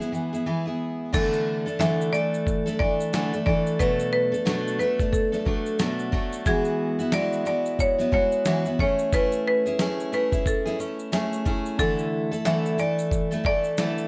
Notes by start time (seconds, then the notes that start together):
Already playing: G#3 B3 E4 B4
0.00 B3 E4 G#4, snare, shaker
0.12 E3 B3 E4 G#4, shaker
0.33 B3 E4 G#4, shaker
0.46 E3 B3 E4 G#4
0.66 B3 E4 G#4
1.13 D3 E3 A3 D4 A4, kick, crash, shaker
1.33 shaker
1.66 A3 D4 A4, shaker
1.79 D3 E3 A3 D4 A4 E5, snare, shaker
2.01 shaker
2.12 E3 A3 D4 A4 D5, shaker
2.34 shaker
2.47 kick, shaker
2.66 A3 D4 A4, snare, shaker
2.79 E3 A3 D4 A4 D5, kick
3.00 shaker
3.13 D3 E3 A3 D4 A4, snare, shaker
3.33 A3 D4 A4, shaker
3.46 E3 A3 D4 A4 D5, kick
3.67 shaker
3.79 B2 F#3 A3 D4 A4 B4, kick, shaker
3.99 shaker
4.13 B4
4.32 A3 D4 A4, shaker
4.45 B2 F#3 A3 D4 A4, snare, shaker
4.68 shaker
4.79 F#3 A3 D4 A4 B4, shaker
4.99 A3 D4 A4, kick, shaker
5.13 A4, kick, shaker
5.32 A3 D4 A4, snare, shaker
5.45 F#3 A3 D4 A4, kick
5.66 shaker
5.79 B2 F#3 A3 D4 A4, snare, shaker
5.99 shaker
6.12 F#3 A3 D4 A4, kick
6.32 shaker
6.46 E3 G#3 B3 E4 F#4 G#4, kick, shaker
6.65 shaker
6.99 B3 E4 F#4, shaker
7.12 E3 G#3 B3 E4 F#4 D5, snare, shaker
7.33 shaker
7.45 G#3 B3 E4 F#4 D5, shaker
7.66 shaker
7.79 C#5, kick, shaker
7.98 B3 E4 F#4, snare, shaker
8.12 G#3 B3 E4 F#4 C#5, kick
8.32 shaker
8.45 E3 G#3 B3 E4 F#4, snare, shaker
8.65 B3 E4 F#4, shaker
8.79 A3 C#4 E4 G#4 C#5, kick
8.99 shaker
9.13 A3 C#4 E4 G#4 B4, kick, shaker
9.32 shaker
9.48 B4
9.66 C#4 E4 G#4, shaker
9.79 A3 C#4 E4 G#4, snare, shaker
10.00 shaker
10.12 A3 C#4 E4 G#4 B4, shaker
10.32 C#4 E4 G#4, kick, shaker
10.46 A4, kick, shaker
10.65 C#4 E4 G#4, snare, shaker
10.79 A3 C#4 E4, shaker
10.99 shaker
11.12 A3 C#4 E4 G#4, snare, shaker
11.33 shaker
11.45 A3 C#4 E4 G#4, kick, shaker
11.66 shaker
11.78 D3 E3 A3 D4 E4 A4, kick, shaker
11.82 A4
11.99 shaker
12.31 A3 E4 A4, shaker
12.45 D3 E3 A3 E4 A4 E5, snare, shaker
12.66 shaker
12.78 E3 A3 E4 A4 D5, shaker
12.99 shaker
13.11 kick, shaker
13.31 A3 E4 A4, snare, shaker
13.44 E3 A3 E4 A4 D5, kick
13.64 shaker
13.77 D3 E3 A3 E4 A4, snare, shaker
13.98 shaker